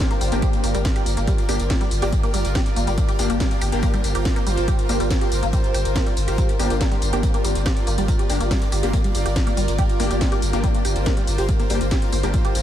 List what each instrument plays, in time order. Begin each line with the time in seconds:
Already playing: synth stab A#3 D4 G4, ambient pad F4 A#4 D5
0.11 synth arpeggio sound A#3, closed hi-hat, tambourine
0.21 sub bass G1, synth arpeggio sound G3, open hi-hat, tambourine
0.32 sub bass G1, synth stab A#3 D4 G4, closed hi-hat, tambourine
0.42 synth arpeggio sound G4, kick, closed hi-hat, tambourine
0.53 closed hi-hat, tambourine
0.64 sub bass G1, synth arpeggio sound A#3, open hi-hat, tambourine
0.75 sub bass G1, synth arpeggio sound G3, closed hi-hat, tambourine
0.85 kick, snare, closed hi-hat, tambourine
0.96 synth arpeggio sound G4, closed hi-hat, tambourine
1.06 sub bass G1, open hi-hat, tambourine
1.17 sub bass G1, synth arpeggio sound A#3, closed hi-hat, tambourine
1.27 synth arpeggio sound G3, kick, closed hi-hat, tambourine
1.38 closed hi-hat, tambourine
1.49 sub bass G1, synth stab A#3 D4 G4, synth arpeggio sound G4, open hi-hat, tambourine
1.60 sub bass G1, closed hi-hat, tambourine
1.70 synth arpeggio sound A#3, kick, snare, closed hi-hat, tambourine
1.81 synth arpeggio sound G3, closed hi-hat, tambourine
1.91 sub bass G1, open hi-hat, tambourine
2.02 sub bass G1, synth stab A#3 D4 G4, synth arpeggio sound G4, closed hi-hat, tambourine
2.12 kick, closed hi-hat, tambourine
2.23 synth arpeggio sound A#3, closed hi-hat, tambourine
2.34 sub bass G1, synth arpeggio sound G3, open hi-hat, tambourine
2.45 sub bass G1, closed hi-hat, tambourine
2.55 synth arpeggio sound G4, kick, snare, closed hi-hat, tambourine
2.66 closed hi-hat, tambourine
2.76 sub bass G1, synth arpeggio sound A#3, open hi-hat, tambourine
2.87 sub bass G1, synth arpeggio sound G3, closed hi-hat, tambourine
2.98 kick, closed hi-hat, tambourine
3.09 synth arpeggio sound G4, closed hi-hat, tambourine
3.17 sub bass G1, synth stab A#3 D4 G4, ambient pad C5, open hi-hat, tambourine
3.30 sub bass G1, synth arpeggio sound A#3, closed hi-hat, tambourine
3.40 synth arpeggio sound G3, kick, snare, closed hi-hat, tambourine
3.51 closed hi-hat, tambourine
3.61 sub bass G1, synth arpeggio sound G4, open hi-hat, tambourine
3.72 sub bass G1, synth stab A#3 D4 G4, closed hi-hat, tambourine
3.83 synth arpeggio sound A#3, kick, closed hi-hat, tambourine
3.94 synth arpeggio sound G3, closed hi-hat, tambourine
4.04 sub bass G1, open hi-hat, tambourine
4.15 sub bass G1, synth arpeggio sound G4, closed hi-hat, tambourine
4.25 kick, snare, closed hi-hat, tambourine
4.36 synth arpeggio sound A#3, closed hi-hat, tambourine
4.47 sub bass G1, synth arpeggio sound G3, open hi-hat, tambourine
4.57 sub bass G1, closed hi-hat, tambourine
4.68 synth arpeggio sound G4, kick, closed hi-hat, tambourine
4.79 closed hi-hat, tambourine
4.89 sub bass G1, synth arpeggio sound A#3, synth stab A#3 D4 G4, open hi-hat, tambourine
5.00 sub bass G1, synth arpeggio sound G3, closed hi-hat, tambourine
5.10 kick, snare, closed hi-hat, tambourine
5.21 synth arpeggio sound G4, closed hi-hat, tambourine
5.32 sub bass G1, open hi-hat, tambourine
5.43 sub bass G1, synth arpeggio sound A#3, closed hi-hat, tambourine
5.53 synth arpeggio sound G3, kick, closed hi-hat, tambourine
5.64 closed hi-hat, tambourine
5.74 sub bass G1, synth arpeggio sound G4, open hi-hat, tambourine
5.85 sub bass G1, closed hi-hat, tambourine
5.96 synth arpeggio sound A#3, kick, snare, closed hi-hat, tambourine
6.07 synth arpeggio sound G3, closed hi-hat, tambourine
6.17 sub bass G1, open hi-hat, tambourine
6.28 sub bass G1, synth arpeggio sound G4, closed hi-hat, tambourine
6.38 synth arpeggio sound G3, kick, closed hi-hat, tambourine
6.49 closed hi-hat, tambourine
6.58 sub bass G1, synth stab A#3 D4 G4, synth arpeggio sound G4, ambient pad D5, open hi-hat, tambourine
6.70 sub bass G1, closed hi-hat, tambourine
6.81 synth arpeggio sound A#3, kick, snare, closed hi-hat, tambourine
6.92 synth arpeggio sound G3, closed hi-hat, tambourine
7.02 sub bass G1, open hi-hat, tambourine
7.13 sub bass G1, synth stab A#3 D4 G4, synth arpeggio sound G4, closed hi-hat, tambourine
7.23 kick, closed hi-hat, tambourine
7.34 synth arpeggio sound A#3, closed hi-hat, tambourine
7.44 sub bass G1, synth arpeggio sound G3, open hi-hat, tambourine
7.55 sub bass G1, closed hi-hat, tambourine
7.66 synth arpeggio sound G4, kick, snare, closed hi-hat, tambourine
7.77 closed hi-hat, tambourine
7.87 sub bass G1, synth arpeggio sound A#3, open hi-hat, tambourine
7.98 sub bass G1, synth arpeggio sound G3, closed hi-hat, tambourine
8.08 kick, closed hi-hat, tambourine
8.19 synth arpeggio sound G4, closed hi-hat, tambourine
8.30 sub bass G1, synth stab A#3 D4 G4, open hi-hat, tambourine
8.40 sub bass G1, synth arpeggio sound A#3, closed hi-hat, tambourine
8.51 synth arpeggio sound G3, kick, snare, closed hi-hat, tambourine
8.62 closed hi-hat, tambourine
8.72 sub bass G1, synth arpeggio sound G4, open hi-hat, tambourine
8.83 sub bass G1, synth stab A#3 D4 G4, closed hi-hat, tambourine
8.93 synth arpeggio sound A#3, kick, closed hi-hat, tambourine
9.04 synth arpeggio sound G3, closed hi-hat, tambourine
9.15 sub bass G1, open hi-hat, tambourine
9.26 sub bass G1, synth arpeggio sound G4, closed hi-hat, tambourine
9.36 kick, snare, closed hi-hat, tambourine
9.47 synth arpeggio sound A#3, closed hi-hat, tambourine
9.57 sub bass G1, synth arpeggio sound G3, open hi-hat, tambourine
9.68 sub bass G1, closed hi-hat, tambourine
9.78 synth arpeggio sound G4, kick, closed hi-hat, tambourine
9.89 closed hi-hat, tambourine
9.98 sub bass G1, synth arpeggio sound A#3, synth stab A#3 D4 G4, ambient pad C5, open hi-hat, tambourine
10.11 sub bass G1, synth arpeggio sound G3, closed hi-hat, tambourine
10.21 kick, snare, closed hi-hat, tambourine
10.32 synth arpeggio sound G4, closed hi-hat, tambourine
10.42 sub bass G1, open hi-hat, tambourine
10.53 sub bass G1, synth stab A#3 D4 G4, synth arpeggio sound A#3, closed hi-hat, tambourine
10.64 synth arpeggio sound G3, kick, closed hi-hat, tambourine
10.74 closed hi-hat, tambourine
10.85 sub bass G1, synth arpeggio sound G4, open hi-hat, tambourine
10.96 sub bass G1, closed hi-hat, tambourine
11.06 synth arpeggio sound A#3, kick, snare, closed hi-hat, tambourine
11.17 synth arpeggio sound G3, closed hi-hat, tambourine
11.27 sub bass G1, open hi-hat, tambourine
11.38 sub bass G1, synth arpeggio sound G4, closed hi-hat, tambourine
11.49 kick, closed hi-hat, tambourine
11.60 synth arpeggio sound A#3, closed hi-hat, tambourine
11.70 sub bass G1, synth arpeggio sound G3, synth stab A#3 D4 G4, open hi-hat, tambourine
11.81 sub bass G1, closed hi-hat, tambourine
11.91 synth arpeggio sound G4, kick, snare, closed hi-hat, tambourine
12.02 closed hi-hat, tambourine
12.12 sub bass G1, synth arpeggio sound A#3, open hi-hat, tambourine
12.23 sub bass G1, synth arpeggio sound G3, synth stab A#3 D4 G4, closed hi-hat, tambourine
12.34 kick, closed hi-hat, tambourine
12.45 synth arpeggio sound G4, closed hi-hat, tambourine
12.55 sub bass G1, open hi-hat, tambourine